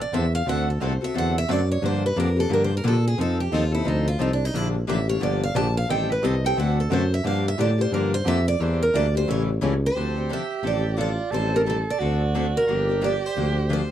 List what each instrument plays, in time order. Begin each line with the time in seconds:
0.01 steel-string acoustic guitar D5
0.12 tuba E2, steel-string acoustic guitar D3 F3 C4 D4 A4 E5
0.35 steel-string acoustic guitar F5
0.47 tuba D2, steel-string acoustic guitar D3 A3 C4 F#4 A4 F#5
0.70 steel-string acoustic guitar A4
0.81 tuba C2, steel-string acoustic guitar D3 A3 C4 F#4 A4 C5
1.01 tuba C2, steel-string acoustic guitar C4 F#4 A4 E5
1.14 tuba E2, steel-string acoustic guitar D3 A3 C4 F#4 A4
1.18 steel-string acoustic guitar F#5
1.38 steel-string acoustic guitar E5
1.48 tuba F#2, steel-string acoustic guitar D3 A3 C4 F#4 A4 D5
1.71 steel-string acoustic guitar C#5
1.82 tuba G2, steel-string acoustic guitar D3 F3 A#3 D4 G4 C5
2.06 steel-string acoustic guitar B4
2.16 tuba F2, steel-string acoustic guitar D3 F3 A#3 D4 G4 A#4
2.36 steel-string acoustic guitar A#3 D4 G4 A4
2.49 tuba G2, steel-string acoustic guitar D3 F3 A#3 D4 G4
2.53 steel-string acoustic guitar A#4
2.64 steel-string acoustic guitar C5
2.77 steel-string acoustic guitar A#4
2.84 tuba A#2, steel-string acoustic guitar D3 F3 A#3 D4 G4
2.88 steel-string acoustic guitar A4
3.07 steel-string acoustic guitar G#4
3.18 tuba F2, steel-string acoustic guitar F3 C4 D#4 A4
3.40 steel-string acoustic guitar G4
3.52 tuba D#2, steel-string acoustic guitar F3 C4 D#4 F4 A4
3.72 steel-string acoustic guitar C4 D#4 E4 A4
3.84 tuba D2, steel-string acoustic guitar F3 C4 D#4 A4
4.08 steel-string acoustic guitar F4
4.19 tuba C2, steel-string acoustic guitar F3 C4 D#4 A4
4.33 steel-string acoustic guitar D4
4.45 steel-string acoustic guitar D#4
4.54 tuba A#1, steel-string acoustic guitar D3 F3 A#3 D4 E4 G4
4.87 tuba A1, steel-string acoustic guitar D3 F3 A#3 D4 G4 E5
5.08 steel-string acoustic guitar A#3 D4 G4 C#5
5.20 tuba G1, steel-string acoustic guitar D3 F3 A#3 D4 G4 D5
5.43 steel-string acoustic guitar F5
5.54 tuba A#1, steel-string acoustic guitar D3 F3 A#3 D4 G4 A5
5.77 steel-string acoustic guitar F5
5.89 tuba A1, steel-string acoustic guitar D#3 G3 C4 G4 A4 G5
6.12 steel-string acoustic guitar B4
6.23 tuba C2, steel-string acoustic guitar D#3 G3 C4 G4 A4 D#5
6.44 steel-string acoustic guitar C4 G4 A4 G5
6.56 tuba D2, steel-string acoustic guitar D3 A3 C4 F#4 A4 F#5
6.80 steel-string acoustic guitar A4
6.90 tuba F#2, steel-string acoustic guitar D3 A3 C4 F#4 A4 C5
7.14 steel-string acoustic guitar E5
7.24 tuba G2, steel-string acoustic guitar D3 F3 A#3 D4 G4 F5
7.48 steel-string acoustic guitar E5
7.58 tuba A2, steel-string acoustic guitar D3 F3 A#3 D4 G4 D5
7.78 steel-string acoustic guitar A#3 D4 G4 C5
7.91 tuba G2, steel-string acoustic guitar D3 F3 A#3 D4 G4 A#4
8.14 steel-string acoustic guitar C5
8.25 tuba F2, steel-string acoustic guitar D3 F3 A#3 D4 G4 E5
8.48 steel-string acoustic guitar D5
8.60 tuba E2, steel-string acoustic guitar E3 G3 A#3 D4 E4 G4 A#4 C5
8.83 steel-string acoustic guitar A#4
8.93 tuba D2, steel-string acoustic guitar E3 G3 A#3 D4 E4 G4 A#4 D5
9.15 steel-string acoustic guitar A#3 D4 G4 C5
9.27 tuba A1, steel-string acoustic guitar C#3 E3 G3 A3 C#4 E4 G4 A4 C#5
9.61 tuba C#2, steel-string acoustic guitar C#3 E3 G3 A3 C#4 E4 G4 A4
9.86 steel-string acoustic guitar C5
9.96 tuba D2, steel-string acoustic guitar D3 F3 C4 D4 A4, soprano saxophone G4
10.17 steel-string acoustic guitar C4 D4 A4
10.29 steel-string acoustic guitar D3 F3 C4 D4 A4 E5
10.63 tuba A1, steel-string acoustic guitar D3 F3 C4 D4 A4
10.67 steel-string acoustic guitar D5
10.97 steel-string acoustic guitar D3 F3 C4 D4 A4 D5, soprano saxophone F4
11.31 tuba A1, steel-string acoustic guitar D#3 G3 C4 G4 A4 C5, soprano saxophone A4
11.53 steel-string acoustic guitar C4 G4 A4 A#4
11.66 steel-string acoustic guitar D#3 G3 C4 G4 A4
11.90 steel-string acoustic guitar D5
11.99 tuba D2, steel-string acoustic guitar D3 A3 C4 F#4 A4, soprano saxophone F#4
12.35 steel-string acoustic guitar D3 A3 C4 F#4 A4
12.57 steel-string acoustic guitar A#4
12.67 tuba G1, steel-string acoustic guitar D3 F3 A#3 D4 G4, soprano saxophone G4
12.89 steel-string acoustic guitar A#3 D4 G4
13.01 steel-string acoustic guitar D3 F3 A#3 D4 G4 D5
13.26 steel-string acoustic guitar C5
13.36 tuba D2, steel-string acoustic guitar D3 F3 A#3 D4 G4
13.69 steel-string acoustic guitar D3 F3 A#3 D4 G4 C5